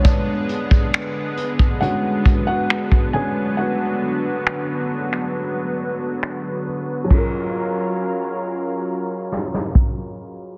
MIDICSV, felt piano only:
0, 0, Header, 1, 2, 480
1, 0, Start_track
1, 0, Key_signature, 6, "major"
1, 0, Tempo, 882353
1, 26, Time_signature, 4, 2, 24, 8
1, 5754, End_track
2, 0, Start_track
2, 0, Title_t, "Felt piano"
2, 0, Program_c, 0, 0
2, 0, Control_c, 0, 64, 127
2, 0, Note_on_c, 0, 50, 51
2, 0, Note_on_c, 0, 56, 49
2, 0, Note_on_c, 0, 73, 59
2, 21, Note_on_c, 0, 74, 80
2, 32, Note_on_c, 0, 62, 61
2, 483, Note_off_c, 0, 50, 0
2, 485, Note_off_c, 0, 56, 0
2, 967, Note_off_c, 0, 62, 0
2, 982, Note_on_c, 0, 78, 92
2, 985, Note_on_c, 0, 50, 47
2, 987, Note_on_c, 0, 56, 45
2, 990, Note_on_c, 0, 61, 52
2, 992, Note_on_c, 0, 66, 73
2, 1012, Note_off_c, 0, 74, 0
2, 1204, Note_off_c, 0, 50, 0
2, 1205, Note_off_c, 0, 56, 0
2, 1206, Note_off_c, 0, 61, 0
2, 1327, Note_off_c, 0, 66, 0
2, 1335, Note_off_c, 0, 78, 0
2, 1343, Note_on_c, 0, 78, 104
2, 1353, Note_on_c, 0, 66, 68
2, 1687, Note_off_c, 0, 66, 0
2, 1705, Note_on_c, 0, 80, 93
2, 1706, Note_on_c, 0, 50, 50
2, 1711, Note_on_c, 0, 56, 46
2, 1713, Note_on_c, 0, 61, 58
2, 1714, Note_on_c, 0, 68, 73
2, 1715, Note_off_c, 0, 78, 0
2, 1928, Note_off_c, 0, 80, 0
2, 1934, Note_off_c, 0, 68, 0
2, 1943, Note_on_c, 0, 78, 81
2, 1954, Note_on_c, 0, 66, 65
2, 3362, Note_off_c, 0, 78, 0
2, 3368, Note_off_c, 0, 66, 0
2, 3604, Note_off_c, 0, 50, 0
2, 3606, Note_off_c, 0, 56, 0
2, 3607, Note_off_c, 0, 61, 0
2, 3832, Note_on_c, 0, 54, 73
2, 3849, Note_on_c, 0, 61, 69
2, 3866, Note_on_c, 0, 65, 69
2, 3872, Control_c, 0, 64, 0
2, 3875, Note_off_c, 0, 73, 0
2, 3883, Note_on_c, 0, 68, 66
2, 3901, Note_on_c, 0, 70, 83
2, 3979, Control_c, 0, 64, 127
2, 5754, Note_off_c, 0, 54, 0
2, 5754, Note_off_c, 0, 61, 0
2, 5754, Note_off_c, 0, 65, 0
2, 5754, Note_off_c, 0, 68, 0
2, 5754, Note_off_c, 0, 70, 0
2, 5754, End_track
0, 0, End_of_file